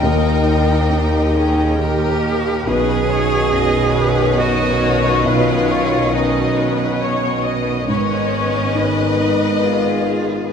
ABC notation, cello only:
X:1
M:3/4
L:1/8
Q:1/4=69
K:Blyd
V:1 name="Cello"
D3 C =G2 | G4 F2 | E2 D2 z B, | C3 D E2 |]